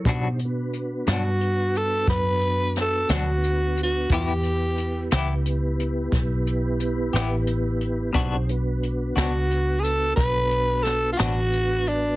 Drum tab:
HH |xxxxxxxxxxxx|xxxxxxxxxxxx|xxxxxxxxxxxx|
SD |---o----oo--|---o-----o--|---o----oo--|
BD |o-----o-----|o-----o-----|o-----o-----|